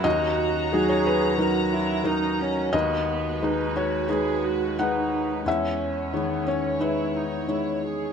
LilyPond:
<<
  \new Staff \with { instrumentName = "String section" } { \time 4/4 \key cis \dorian \tempo 4 = 89 << { <fis' ais''>1 | <fis' b'>1 | <cis' cis''>1 | } \\ { cis'1 | gis1~ | gis1 | } >> }
  \new Staff \with { instrumentName = "Viola" } { \time 4/4 \key cis \dorian fis'4 gis'4 fis'8 e'8 dis'8 cis'8 | b4 dis'8 fis'8 gis'8 fis'8 dis'4 | cis'4 b8 cis'8 e'8 dis'8 e'8 gis'8 | }
  \new Staff \with { instrumentName = "Felt piano" } { \time 4/4 \key cis \dorian << { dis''4~ dis''16 cis''16 b'8 r2 | dis''4. cis''8 r4 fis''4 | e''4. cis''8 b'2 | } \\ { dis,4 <fis dis' fis'>4 <fis dis' ais'>4 <fis dis' ais'>4 | dis,4 <gis dis' b'>4 <gis dis' b'>4 <gis dis' b'>4 | e,4 <dis gis cis''>4 <gis dis' cis''>4 <gis dis' cis''>4 | } >> }
>>